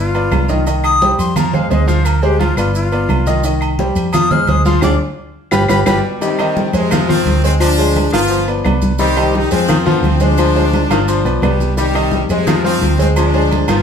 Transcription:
Already playing: G1 F4
0.14 B3 B4 D5, high conga, low agogo, maracas
0.31 C2, high conga, low timbale, low agogo, claves, maracas
0.49 D#3 D#4 D#5, high conga, maracas
0.67 D#3 D#4 D#5, low agogo, maracas
0.84 D#6, high conga, low agogo, claves, maracas
1.02 G3 G4 C5, high conga, maracas
1.18 F2 C6, high conga, low agogo, maracas
1.36 F3 F4 F5 A#5, high conga, low conga, low agogo, claves, maracas
1.53 G#3 G#4 C5 F5, high conga, low conga, maracas
1.70 D2 G#3 G#4 C5 D#5, high conga, low timbale, low agogo, maracas
1.87 F3 F4 C5 F5, high conga, maracas
2.05 A#4, high conga, low agogo, claves, maracas
2.23 G#3 G4 G#4 C5, high conga, maracas
2.39 F3 F4 F5, high conga, low agogo, maracas
2.57 G1 B3 F4 B4 D5, high conga, low agogo, claves, maracas
2.75 F4, high conga, maracas
2.92 B3 B4 D5, high conga, low agogo, maracas
3.09 C2, high conga, low agogo, claves, maracas
3.26 D#3 D#4 D#5, high conga, maracas
3.44 D#3 D#4 D#5, high conga, low agogo, maracas
3.61 high conga, low agogo, claves, maracas
3.79 G3 G4 C5, high conga, maracas
3.96 F2, high conga, low agogo, maracas
4.13 F3 F4 F5 D#6, high conga, low conga, low agogo, claves, maracas
4.31 G#3 G#4 C5 F6, high conga, low conga, maracas
4.47 D2 G#3 G#4 C5 D#6, high conga, low agogo, maracas
4.65 F3 F4 F5 C6, high conga, maracas
4.81 D2 D4 F4 G#4 D6, high conga, high timbale, claves, maracas
5.51 G1 F4 G4 B4 B5, high conga, high timbale, claves, maracas
5.68 G1 F4 G4 B4 B5, high conga, high timbale, claves, maracas
5.86 G1 B2 G3 F4 G4 B4 B5, high conga, high timbale, claves, maracas
6.21 C3 D#3 G3 D#4 D#5, high conga, low agogo, maracas
6.39 D#3 D#4 D#5, high conga, low agogo, claves, maracas
6.56 high conga, maracas
6.73 F2 C3 G#3 G#4 C5, high conga, low agogo, maracas
6.91 D#3 F3 F4 F5, high conga, low conga, low agogo, claves, maracas
7.08 D#3 F3 C4 F4 F5, high conga, low conga, maracas
7.26 D2, high conga, low agogo, maracas
7.43 D#3 G#3 C4 G#4 C5, maracas
7.60 F3 D4, high conga, low agogo, claves, maracas
7.78 G#3 G#4 C5, high conga, maracas
7.96 high conga, low agogo, maracas
8.12 G1 D#3 F3 B3 F4 F5, high conga, low agogo, claves, maracas
8.29 F3, high conga, maracas
8.48 B3 B4 D5, high conga, low agogo, maracas
8.64 C2 B3 B4 D5, high conga, low timbale, low agogo, claves, maracas
8.82 high conga, maracas
8.98 D#3 G3 C4 D#4 G4 D#5, high conga, low agogo, maracas
9.16 D#3 D#4 D#5, high conga, low agogo, claves, maracas
9.33 G3 D#4, high conga, maracas
9.51 F2 F3 G#3 C4 G#4 C5, high conga, low agogo, maracas
9.68 D#3 F3 F4 F5, high conga, low conga, low agogo, claves, maracas
9.85 D3 F3 B3 F4 F5, high conga, low conga, maracas
10.03 D2 F3 C4, high conga, low agogo, maracas
10.20 F3 G#3 D4 G#4 C5, high conga, maracas
10.38 F3, high conga, low agogo, claves, maracas
10.55 G#3 G#4 C5, high conga, maracas
10.73 high conga, low agogo, maracas
10.90 G1 D#3 F3 F4 F5, high conga, low agogo, claves, maracas
11.08 F3, high conga, maracas
11.24 B1 B3 B4 D5, high conga, low agogo, maracas
11.41 C2 B2 G3 B3 B4 D5, high conga, low timbale, low agogo, claves, maracas
11.60 high conga, maracas
11.75 C3 D#3 G3 D#4 D#5, high conga, low agogo, maracas
11.94 D#3 D#4 D#5, high conga, low agogo, claves, maracas
12.11 high conga, maracas
12.29 F2 C3 G#3 G#4 C5, high conga, low agogo, maracas
12.47 D#3 F3 F4 F5, high conga, low conga, low agogo, claves, maracas
12.63 D#3 F3 C4 F4 F5, high conga, maracas
12.81 D2, high conga, low agogo, maracas
12.99 D#3 G#3 C4 G#4 C5, high conga, maracas
13.16 F3 D4, high conga, low agogo, claves, maracas
13.33 G#3 G#4 C5, maracas
13.51 high conga, low agogo, maracas
13.68 G1 D#3 F3 B3 F4 F5, high conga, low agogo, claves, maracas

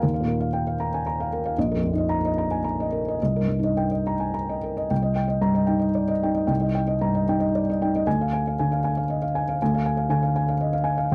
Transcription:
Already playing: F5
0.02 D#2 A#4
0.14 F5
0.20 A#2
0.27 A#4
0.40 F5
0.53 G5
0.67 F5
0.80 A#5
0.94 G#5
1.06 A#5
1.20 F5
1.33 A#4
1.45 F5
1.58 A#1 D#5
1.71 F2 A#4
1.84 F2
1.93 D#4
1.98 D#5
2.09 A#5
2.25 D#5
2.38 A#5
2.51 G#5
2.64 A#5
2.80 D#5
2.92 A#4
3.08 D#5
3.22 C2 D#5
3.36 A#4
3.40 G2
3.48 G2
3.59 D#4
3.64 D#5
3.77 G5
3.91 D#5
4.07 A#5
4.20 G#5
4.34 A#5
4.49 D#5
4.63 A#4
4.77 D#5
4.90 C2 G5
5.02 D#5
5.16 G5
5.28 D#5
5.41 G2 A#5
5.54 D#5
5.67 D#4 G5
5.79 D#5
5.95 D5
6.08 D#5
6.23 D#4 G5
6.35 D#5
6.47 C2 G5
6.61 D#5
6.75 G5
6.87 D#5
7.01 G2 A#5
7.15 D#5
7.28 D#4 G5
7.40 D#5
7.55 D5
7.70 D#5
7.82 D#4 G5
7.96 D#5
8.07 D2 G#5
8.21 F5
8.33 G#5
8.47 F5
8.59 D3 G#5
8.72 F5
8.84 G#5
8.97 F5
9.10 D#5
9.22 F5
9.35 G#5
9.49 F5
9.62 D2 G#5
9.74 F5
9.86 G#5
9.97 F5
10.09 D3 G#5
10.23 F5
10.36 G#5
10.49 F5
10.61 D#5
10.73 F5
10.84 G#5
10.98 F5
11.12 D#2

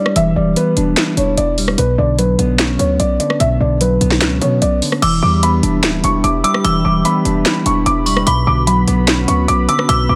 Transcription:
Already playing: G3 D4 E4 D5
0.06 cross-stick
0.16 E1 E3 E5, closed hi-hat
0.36 E1 G3 D5
0.56 B3 B4, closed hi-hat
0.77 E1 D4, closed hi-hat
0.97 E4, snare, clap, closed hi-hat
1.17 E1 D4 C#5, closed hi-hat
1.37 E1 D5, closed hi-hat
1.58 G3, open hi-hat
1.68 cross-stick
1.78 B1 B2 B4, closed hi-hat
1.98 B1 D3 D5
2.18 F#3 B4, closed hi-hat
2.39 B1 B3, closed hi-hat
2.59 C#4, snare, clap, closed hi-hat
2.79 D2 B3 C#5, closed hi-hat
3.00 B1 D5, closed hi-hat
3.20 D3 D5, closed hi-hat
3.30 cross-stick
3.40 B1 B2 E5, closed hi-hat
3.60 B1 D3 D5
3.81 F#3 B4, closed hi-hat
4.01 B1 B3, closed hi-hat
4.11 snare
4.21 C#2 C#4, snare, clap, closed hi-hat
4.42 B2 B3 C#5, closed hi-hat
4.62 B1 D5, closed hi-hat
4.82 D3, open hi-hat
4.92 cross-stick
5.02 E1 E3 D4 G4 E5 B5 D6 E6, closed hi-hat, crash
5.22 E2 G3 D6
5.43 B3 B5, closed hi-hat
5.63 E1 D4, closed hi-hat
5.83 D1 E4, snare, clap, closed hi-hat
6.04 E1 D4 C#6, closed hi-hat
6.24 E1 D6, closed hi-hat
6.44 G3 D6 E6, closed hi-hat
6.54 cross-stick
6.64 E1 E3 D6 E6, closed hi-hat
6.85 E1 G3 D6
7.05 B3 B5, closed hi-hat
7.25 E1 D4, closed hi-hat
7.46 E4, snare, clap, closed hi-hat
7.66 E1 D4 C#6, closed hi-hat
7.86 E1 D6, closed hi-hat
8.06 G3 C#6, open hi-hat
8.17 cross-stick
8.27 B1 B2 B3 F#4 B4 B5 D6, closed hi-hat
8.47 B1 D3 D6
8.67 F#3 B5, closed hi-hat
8.87 B1 B3, closed hi-hat
9.08 C#4, snare, clap, closed hi-hat
9.28 D2 B3 C#6, closed hi-hat
9.48 B1 D6, closed hi-hat
9.68 D3 D6 E6, closed hi-hat
9.79 cross-stick
9.89 B1 B2 D6 E6, closed hi-hat
10.09 B1 D3 D6

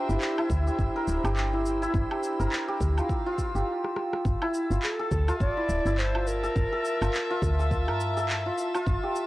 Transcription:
Already playing: D4 F4 G4 A#4 C5 E5 E6
0.09 G1 E4, cabasa
0.21 clap, cabasa
0.38 E4, low woodblock
0.50 D2, kick, cabasa
0.67 G4, cabasa
0.79 G1, kick, cabasa
0.96 A#4
1.08 D1, cabasa
1.24 G1 G4, cabasa, low woodblock
1.37 clap, cabasa
1.53 E4
1.66 cabasa
1.82 E4, cabasa
1.94 G1, kick, cabasa
2.11 G4, low woodblock
2.23 cabasa
2.40 G1 A#4, cabasa
2.52 clap, cabasa
2.68 G4
2.81 D2, kick, cabasa
2.98 F4 F5, cabasa, low woodblock
3.09 kick, cabasa
3.26 F4
3.38 kick, cabasa
3.55 G1 G4, cabasa
3.84 cross-stick
3.96 cross-stick
4.13 cross-stick
4.25 G1 A5, kick, cabasa
4.42 E4, low woodblock
4.54 cabasa
4.70 G1 F4, cabasa
4.83 A4, clap, cabasa
4.99 A4
5.11 D2, kick, cabasa
5.28 F4 E5, cabasa, low woodblock
5.40 G1 D5, kick, cabasa
5.57 E4
5.69 D1, cabasa
5.86 G1 E4, cabasa
5.98 C5, clap, cabasa
6.15 F4, low woodblock
6.27 A#4, cabasa
6.43 A4, cabasa
6.56 G1, kick, cabasa
6.73 A4
6.85 cabasa
7.01 G1 F4, cabasa, low woodblock
7.14 clap, cabasa
7.30 F4
7.42 D2, kick, cabasa
7.59 A4, cabasa
7.71 kick, cabasa
7.88 G2 A#4, low woodblock
8.00 cabasa
8.17 A4, cabasa
8.29 clap, cabasa
8.46 F4
8.58 cabasa
8.75 F4, cabasa, low woodblock
8.87 G1, kick, cabasa
9.03 G4
9.16 cabasa

